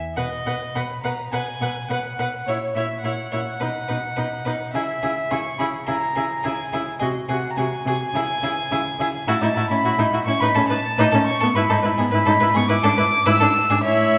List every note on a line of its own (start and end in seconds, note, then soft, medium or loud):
0.17 0.25 B2 soft
0.17 0.25 B4 soft
0.17 0.77 D#5 medium
0.17 0.25 F#5 soft
0.46 0.54 B2 soft
0.46 0.55 B4 soft
0.46 0.54 F#5 soft
0.75 0.83 B2 soft
0.75 0.84 B4 soft
0.75 0.83 F#5 soft
0.75 1.02 B5 medium
1.03 1.12 B2 soft
1.03 1.13 B4 soft
1.03 1.12 F#5 soft
1.03 1.33 A#5 medium
1.31 1.41 B2 soft
1.31 1.42 B4 soft
1.31 1.41 F#5 soft
1.31 1.90 G#5 medium
1.61 1.69 B2 soft
1.61 1.70 B4 soft
1.61 1.70 F#5 soft
1.88 1.98 B2 soft
1.88 1.99 B4 soft
1.88 2.48 F#5 medium
1.88 1.98 F#5 soft
2.18 2.26 B2 soft
2.18 2.27 B4 soft
2.18 2.27 F#5 soft
2.46 2.55 A#2 soft
2.46 2.57 E4 soft
2.46 2.76 C#5 medium
2.46 2.56 C#5 soft
2.74 2.83 A#2 soft
2.74 2.85 E4 soft
2.74 2.84 C#5 soft
2.74 3.03 E5 soft
3.04 3.12 A#2 soft
3.04 3.12 E4 soft
3.04 3.13 C#5 soft
3.04 4.71 F#5 medium
3.32 3.41 A#2 soft
3.32 3.41 E4 soft
3.32 3.40 C#5 soft
3.60 3.69 B2 soft
3.60 3.70 D#4 soft
3.60 3.68 B4 soft
3.88 3.97 B2 soft
3.88 3.97 D#4 soft
3.88 3.96 B4 soft
4.16 4.25 B2 soft
4.16 4.26 D#4 soft
4.16 4.24 B4 soft
4.45 4.53 B2 soft
4.45 4.54 D#4 soft
4.45 4.53 B4 soft
4.73 4.82 C#3 soft
4.73 4.83 E4 soft
4.73 4.83 G#4 soft
4.73 5.33 E5 medium
5.02 5.11 C#3 soft
5.02 5.11 E4 soft
5.02 5.10 G#4 soft
5.30 5.40 C#3 soft
5.30 5.39 E4 soft
5.30 5.38 G#4 soft
5.30 5.58 C#6 medium
5.59 5.68 C#3 soft
5.59 5.68 E4 soft
5.59 5.67 G#4 soft
5.59 5.67 B5 medium
5.87 5.96 C#3 soft
5.87 5.96 E4 soft
5.87 5.95 G#4 soft
5.87 6.46 A#5 medium
6.15 6.25 C#3 soft
6.15 6.25 E4 soft
6.15 6.23 G#4 soft
6.43 6.53 C#3 soft
6.43 6.53 E4 soft
6.43 6.51 G#4 soft
6.43 6.99 G#5 medium
6.73 6.81 C#3 soft
6.73 6.81 E4 soft
6.73 6.81 G#4 soft
6.99 7.09 C3 medium
6.99 7.10 F#4 soft
6.99 7.07 G#4 soft
6.99 7.08 D#5 medium
7.29 7.37 C3 soft
7.29 7.38 F#4 soft
7.29 7.37 G#4 soft
7.29 7.52 F#5 medium
7.50 7.59 A#5 medium
7.57 7.65 C3 medium
7.57 7.66 F#4 soft
7.57 7.65 G#4 soft
7.57 9.29 G#5 medium
7.86 7.94 C3 medium
7.86 7.95 F#4 soft
7.86 7.95 G#4 soft
8.14 8.22 C#3 medium
8.14 8.24 E4 soft
8.14 8.23 G#4 soft
8.43 8.51 C#3 soft
8.43 8.51 E4 soft
8.43 8.51 G#4 soft
8.71 8.79 C#3 medium
8.71 8.80 E4 soft
8.71 8.80 G#4 soft
8.99 9.07 C#3 medium
8.99 9.08 E4 soft
8.99 9.09 G#4 medium
9.27 9.33 A2 medium
9.27 9.33 E4 medium
9.27 9.34 F#4 medium
9.27 9.69 A5 medium
9.41 9.47 A2 medium
9.41 9.48 D#4 soft
9.41 9.48 E4 soft
9.56 9.62 A2 soft
9.56 9.62 E4 soft
9.56 9.62 F#4 soft
9.70 9.75 A2 medium
9.70 9.76 C#4 soft
9.70 9.76 E4 soft
9.70 10.26 B5 medium
9.83 9.89 A2 medium
9.83 9.90 E4 medium
9.83 9.90 F#4 medium
9.98 10.04 A2 medium
9.98 10.05 D#4 soft
9.98 10.05 E4 soft
10.12 10.18 A2 medium
10.12 10.19 E4 soft
10.12 10.19 F#4 soft
10.26 10.32 A2 medium
10.26 10.33 C#4 medium
10.26 10.33 E4 medium
10.26 10.42 C#6 medium
10.40 10.46 A2 medium
10.40 10.48 D#4 medium
10.40 10.47 B4 medium
10.40 10.68 B5 medium
10.55 10.61 A2 soft
10.55 10.62 C#4 soft
10.55 10.61 A4 medium
10.69 10.75 A2 soft
10.69 10.77 D#4 soft
10.69 10.75 B4 medium
10.69 11.25 A5 medium
10.98 11.04 A2 medium
10.98 11.05 D#4 medium
10.98 11.04 B4 medium
11.12 11.19 A2 soft
11.12 11.20 C#4 soft
11.12 11.18 A4 medium
11.27 11.57 C#6 medium
11.40 11.47 A2 soft
11.40 11.48 B3 medium
11.40 11.46 A4 medium
11.55 11.61 G#2 medium
11.55 11.62 E4 medium
11.55 11.61 B4 medium
11.55 12.11 B5 medium
11.70 11.75 G#2 medium
11.70 11.76 D#4 soft
11.70 11.75 A4 medium
11.82 11.89 G#2 medium
11.82 11.90 E4 soft
11.82 11.88 B4 soft
11.98 12.04 G#2 medium
11.98 12.05 B3 soft
11.98 12.03 G#4 soft
12.11 12.18 G#2 medium
12.11 12.19 E4 medium
12.11 12.17 B4 medium
12.11 12.57 B5 medium
12.26 12.32 G#2 medium
12.26 12.33 D#4 soft
12.26 12.32 A4 medium
12.40 12.47 G#2 medium
12.40 12.48 E4 medium
12.40 12.46 B4 medium
12.54 12.61 G#2 medium
12.54 12.62 B3 medium
12.54 12.60 G#4 medium
12.54 12.70 C#6 medium
12.68 12.75 G#2 medium
12.68 12.76 E4 medium
12.68 12.74 B4 medium
12.68 13.28 D6 medium
12.83 12.89 G#2 medium
12.83 12.90 D4 medium
12.83 12.89 A4 medium
12.97 13.03 G#2 medium
12.97 13.04 E4 medium
12.97 13.03 B4 medium
13.26 13.32 G#2 medium
13.26 13.33 E4 medium
13.26 13.32 B4 medium
13.26 13.83 E6 loud
13.40 13.47 G#2 medium
13.40 13.47 D4 medium
13.40 13.46 A4 medium
13.70 13.75 G#2 medium
13.70 13.76 D4 medium
13.70 13.75 G#4 medium
13.83 14.18 A2 medium
13.83 14.18 E4 medium
13.83 14.18 C#5 medium
13.83 14.18 E5 medium